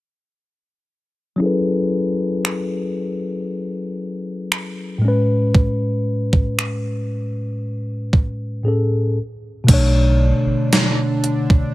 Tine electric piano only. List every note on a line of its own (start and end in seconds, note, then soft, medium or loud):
1.36 4.97 F#3 medium
1.36 4.97 C#4 medium
1.36 4.98 E4 medium
1.42 4.99 G#4 medium
1.42 5.00 A4 medium
1.42 5.01 B4 medium
4.98 8.59 A2 medium
4.98 8.60 G#3 medium
5.05 8.62 C#4 medium
5.05 8.64 B4 medium
8.63 9.16 A2 medium
8.63 9.17 C#4 soft
8.63 9.17 G#4 soft
8.68 9.18 A4 medium
9.64 11.74 B2 medium
9.64 11.74 A3 medium
9.70 11.74 D4 medium
9.70 11.74 C#5 medium